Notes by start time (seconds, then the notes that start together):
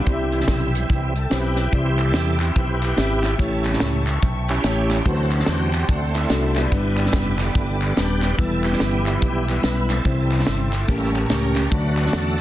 Already playing: G3 C4 E4 G5
0.06 C2 C3 C4 E4 G4 D5 E5 E6, kick, closed hi-hat
0.13 E5
0.32 E3 G3 C4, closed hi-hat
0.41 snare
0.48 B1, kick, snare, closed hi-hat
0.75 closed hi-hat
0.90 C2 E3 G3 C4, kick, closed hi-hat
1.15 A4, closed hi-hat
1.30 B1 C4 E4 G4 B4 C5, snare, closed hi-hat
1.56 snare, closed hi-hat
1.72 C2 C3 E3 G3 C4 E4 G4 C5 D5, kick, closed hi-hat
1.79 E5
1.98 C4 E4 A4, clap, closed hi-hat
2.14 E2, snare, closed hi-hat
2.40 G4, clap, closed hi-hat
2.56 B1 E4 G4 B4, kick, closed hi-hat
2.82 clap, closed hi-hat
2.97 G#1 C4 E4 G4 E5, snare, closed hi-hat
3.23 snare, clap, closed hi-hat
3.38 A1 A2 A3 C#4 E4 G4 A4 C#5 A5 C#6, kick, closed hi-hat
3.65 C#3 G3 B3, clap, closed hi-hat
3.73 snare
3.80 C#2, snare, closed hi-hat
4.07 clap, closed hi-hat
4.23 B1, kick, closed hi-hat
4.48 C#4 E4 G4, clap, closed hi-hat
4.64 A1 A3 E4 G4 C#5, snare, closed hi-hat
4.90 snare, clap, closed hi-hat
5.05 D2 D3 E3 F#3 A3 C4 D4 F#4 A4 B4 C5 D5 F#5 C6, kick, closed hi-hat
5.12 C5
5.31 A4, clap, closed hi-hat
5.39 snare
5.46 E2 C4 G4, snare, closed hi-hat
5.73 clap, closed hi-hat
5.89 D2 A3 C4 F#4, kick, closed hi-hat
6.14 A3 C4 E4, clap, closed hi-hat
6.30 C2 A3 D4 F#4 A4, snare, closed hi-hat
6.56 G3 B3 E4, snare, clap, closed hi-hat
6.71 G1 G2 G3 B3 D4 B4 G5 B5 D6, kick, closed hi-hat
6.97 clap, closed hi-hat
7.06 snare
7.13 F1, kick, snare, closed hi-hat
7.38 D3 G3 B3, clap, closed hi-hat
7.55 G1, kick, closed hi-hat
7.81 clap, closed hi-hat
7.96 D#1 G3 B3 D4 G4 B4, snare, closed hi-hat
8.22 snare, clap, closed hi-hat
8.38 E1 E3 G3 B3 E4 A4 B4 E5 B5 E6, kick, closed hi-hat
8.64 E3 G3 B3 E4 G4, clap, closed hi-hat
8.73 snare
8.80 G1, snare, closed hi-hat
9.06 B3 E4 G4, clap, closed hi-hat
9.22 B1, kick, closed hi-hat
9.48 E3 G3 B3, clap, closed hi-hat
9.63 B1 G3 B3 E4 B4, snare, closed hi-hat
9.89 C4 E4 A4, snare, clap, closed hi-hat
10.04 C2 C3 E3 G3 C4 E4 C5 G5 C6 E6, kick, closed hi-hat
10.30 clap, closed hi-hat
10.39 snare
10.47 G1, snare, closed hi-hat
10.73 clap, closed hi-hat
10.88 A1 A2 G3 A3 A#3 C#4 G4 A#4 A5 A#5 C#6, kick, closed hi-hat
11.14 A4, clap, closed hi-hat
11.29 C#2 A3 C#4 G4 A#4, snare, closed hi-hat
11.56 snare, clap, closed hi-hat
11.71 D2 D3 F#3 A3 D4 F#4 B4 D5 F#5 D6, kick, closed hi-hat
11.97 clap, closed hi-hat
12.06 snare
12.13 E2 D4 F#4 A4, snare, closed hi-hat